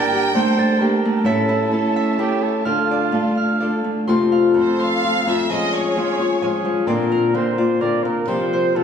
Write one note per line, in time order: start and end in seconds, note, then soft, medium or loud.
0.00 0.34 G2 medium
0.00 0.34 D3 medium
0.00 0.33 G3 medium
0.00 0.34 A#3 medium
0.00 1.25 A#3 medium
0.00 0.34 D4 medium
0.00 0.65 E4 medium
0.00 0.34 A#4 loud
0.00 1.29 D5 medium
0.00 0.78 G5 medium
0.00 1.25 G5 medium
0.00 4.03 A5 soft
0.00 0.35 E6 medium
0.00 0.58 A6 loud
0.13 0.81 G4 medium
0.34 0.57 G3 medium
0.34 1.05 A3 medium
0.34 0.57 A#3 medium
0.34 0.56 D4 medium
0.34 0.56 A4 medium
0.34 0.81 C5 medium
0.57 0.79 G3 soft
0.57 0.79 A#3 soft
0.57 0.80 D4 medium
0.57 0.79 A4 medium
0.57 1.64 A6 medium
0.80 1.24 G3 medium
0.80 1.24 A#3 medium
0.80 1.25 D4 medium
0.80 3.17 G4 medium
0.80 1.27 A#4 medium
1.05 3.12 A3 medium
1.25 1.72 A2 medium
1.25 1.71 A3 medium
1.25 1.70 C#4 medium
1.25 2.65 C#4 medium
1.25 1.71 E4 loud
1.25 1.72 A4 loud
1.25 1.73 A4 medium
1.25 1.96 E5 loud
1.25 2.65 E5 medium
1.49 2.18 E4 loud
1.71 2.18 A3 medium
1.71 2.18 C#4 medium
1.71 2.18 E4 medium
1.71 2.20 A4 medium
1.71 2.21 A4 medium
1.96 2.71 E5 loud
2.18 2.65 A3 medium
2.18 2.66 C#4 medium
2.18 2.71 E4 medium
2.18 2.66 E4 medium
2.18 2.45 G4 medium
2.18 2.66 A4 medium
2.43 2.66 A4 medium
2.64 3.11 D3 medium
2.64 4.06 D4 soft
2.64 3.12 D4 medium
2.64 3.13 F4 medium
2.64 3.81 F4 medium
2.64 3.14 A4 medium
2.64 4.05 F5 soft
2.64 3.37 F6 loud
2.91 3.60 D5 medium
3.12 3.59 D3 medium
3.12 3.84 A3 medium
3.12 3.60 D4 medium
3.12 3.61 F4 medium
3.12 3.61 A4 medium
3.37 4.47 F6 medium
3.60 4.08 D3 medium
3.60 4.08 D4 medium
3.60 4.08 F4 medium
3.60 4.08 A4 medium
3.60 5.45 D5 medium
3.84 5.80 A3 medium
4.07 4.55 F2 medium
4.07 4.55 C3 medium
4.07 4.56 F3 medium
4.07 4.55 A3 medium
4.07 4.55 C4 medium
4.07 4.58 F4 loud
4.07 5.51 A4 medium
4.07 4.79 C6 medium
4.32 5.01 F5 medium
4.54 5.25 F2 medium
4.54 5.03 F3 medium
4.54 5.03 A3 medium
4.54 5.03 C4 medium
4.58 5.04 F4 medium
4.58 4.80 C5 medium
4.79 5.28 F5 medium
4.79 6.10 C6 medium
5.01 5.26 F3 medium
5.01 5.27 A3 medium
5.01 5.27 C4 medium
5.01 5.26 F4 medium
5.01 6.68 F5 medium
5.26 5.53 F2 medium
5.26 5.49 F3 soft
5.26 5.50 A3 soft
5.26 5.49 C4 soft
5.26 5.49 F4 soft
5.26 5.50 E5 medium
5.50 5.96 F3 medium
5.50 5.96 G#3 medium
5.50 5.96 C#4 medium
5.50 5.97 F4 medium
5.50 6.40 G#4 medium
5.50 5.74 D#5 medium
5.74 6.66 C#5 medium
5.74 6.42 G#5 medium
5.96 6.19 F3 medium
5.96 6.63 F3 medium
5.96 6.20 G#3 medium
5.96 6.19 C#4 medium
5.96 6.17 F4 medium
6.19 6.41 G#3 soft
6.19 6.42 C#4 soft
6.19 6.41 F4 medium
6.19 6.94 C#6 medium
6.41 6.86 F3 medium
6.41 6.87 G#3 medium
6.41 6.87 C#4 medium
6.41 6.87 F4 medium
6.41 6.89 G#4 medium
6.41 7.92 G#5 medium
6.65 6.92 F3 medium
6.87 7.34 A#2 medium
6.87 7.33 D3 medium
6.87 7.34 A#3 medium
6.87 7.35 C4 medium
6.87 7.34 F4 medium
6.87 7.37 A#4 loud
6.87 7.58 D5 loud
7.12 7.81 A#4 medium
7.34 8.04 A#2 medium
7.34 7.58 D3 medium
7.34 7.58 A#3 medium
7.34 7.57 C4 medium
7.34 7.57 F4 medium
7.34 7.83 C5 medium
7.58 7.80 A#3 soft
7.58 7.81 C4 soft
7.58 7.81 F4 soft
7.58 8.84 D5 medium
7.80 8.27 D3 medium
7.80 8.28 A#3 medium
7.80 8.27 C4 medium
7.80 8.27 F4 medium
7.80 8.84 A#4 medium
7.80 8.05 D5 loud
8.04 8.33 A#2 medium
8.04 8.30 A#4 medium
8.27 8.75 C3 medium
8.27 8.74 F3 medium
8.27 8.74 G3 medium
8.27 8.75 C4 medium
8.27 8.75 F4 medium
8.27 8.77 C5 loud
8.53 8.84 C5 medium
8.75 8.84 C3 medium
8.75 8.84 F3 medium
8.75 8.84 G3 medium
8.75 8.84 C4 medium
8.75 8.84 F4 medium
8.75 8.84 A4 medium